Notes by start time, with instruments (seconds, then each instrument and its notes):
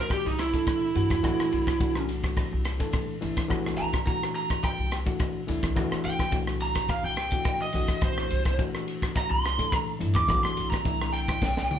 Already playing: reed electric piano E3 A3 D4 F#4
0.00 lead electric guitar A#4
0.10 lead electric guitar G4, muted upright bass stroke, kick, cross-stick, ride
0.25 upright bass C2, lead electric guitar D#4
0.39 lead electric guitar E4, cross-stick, ride
0.53 reed electric piano E3 A3 D4 A4, kick, ride
0.67 kick, cross-stick, ride
0.95 upright bass G2, reed electric piano E3 A3 D4 F#4, ride
1.10 upright bass E2, kick, cross-stick, ride
1.23 upright bass C2, reed electric piano E3 A3 D4 F#4, kick, cross-stick, ride
1.39 muted upright bass stroke, cross-stick
1.52 upright bass C2, ride
1.67 kick, cross-stick, ride
1.79 reed electric piano E3 A3 D4 F#4, kick, ride
1.95 cross-stick
2.09 ride
2.23 kick, cross-stick, ride
2.37 kick, cross-stick, ride
2.52 upright bass C2
2.65 cross-stick, ride
2.79 reed electric piano E3 A3 D4 A4, kick, ride
2.93 kick, cross-stick, ride
3.21 upright bass C2, reed electric piano E3 A3 D4 E4, ride
3.37 muted upright bass stroke, kick, cross-stick, ride
3.48 upright bass C2, reed electric piano E3 A3 D4 F#4, kick, cross-stick, ride
3.66 cross-stick
3.78 upright bass C2, lead electric guitar A#5, ride
3.93 kick, cross-stick, ride
4.06 reed electric piano E3 A3 D4 F#4, lead electric guitar A#5, kick, ride
4.23 cross-stick
4.35 lead electric guitar A#5, ride
4.50 kick, cross-stick, ride
4.63 lead electric guitar G5, muted upright bass stroke, kick, cross-stick, ride
4.78 upright bass C2
4.91 cross-stick, ride
5.06 reed electric piano E3 A3 D4 F#4, kick, ride
5.19 kick, cross-stick, ride
5.47 upright bass D2, reed electric piano E3 A3 D4 E4, ride
5.63 upright bass B1, kick, cross-stick, ride
5.75 upright bass D2, reed electric piano E3 A3 D4 F#4, kick, cross-stick, ride
5.91 muted upright bass stroke, cross-stick
6.04 upright bass C2, lead electric guitar G5, ride
6.19 kick, cross-stick, ride
6.31 reed electric piano E3 A3 D4 F#4, kick, ride
6.47 cross-stick
6.60 lead electric guitar A#5, ride
6.75 kick, cross-stick, ride
6.89 lead electric guitar F5, kick, cross-stick, ride
7.03 upright bass C2, lead electric guitar G5
7.16 cross-stick, ride
7.31 reed electric piano E3 A3 D4 F#4, kick, ride
7.44 kick, cross-stick, ride
7.62 lead electric guitar D#5
7.73 upright bass C2, reed electric piano E3 A3 D4 F#4, ride
7.88 muted upright bass stroke, kick, cross-stick, ride
8.01 upright bass C2, lead electric guitar C5, kick, cross-stick, ride
8.18 cross-stick
8.30 upright bass C2, ride
8.45 kick, cross-stick, ride
8.58 reed electric piano E3 A3 D4 F#4, kick, ride
8.75 cross-stick
8.88 ride
9.02 kick, cross-stick, ride
9.16 lead electric guitar A#5, muted upright bass stroke, kick, cross-stick, ride
9.30 upright bass C2, lead electric guitar C6
9.45 cross-stick, ride
9.58 reed electric piano E3 A3 D4 A4, kick, ride
9.72 kick, cross-stick, ride
9.99 upright bass G2, reed electric piano E3 A3 D4 E4, ride
10.15 upright bass E2, lead electric guitar D6, kick, cross-stick, ride
10.28 upright bass C2, reed electric piano E3 A3 D4 F#4, kick, cross-stick, ride
10.43 lead electric guitar C6, muted upright bass stroke, cross-stick
10.57 upright bass C2, ride
10.70 lead electric guitar A#5, kick, cross-stick, ride
10.84 reed electric piano E3 A3 D4 E4, kick, ride
11.02 cross-stick
11.13 lead electric guitar G5, ride
11.28 kick, cross-stick, ride
11.42 upright bass C2, kick, snare
11.57 upright bass C2, snare
11.71 mid tom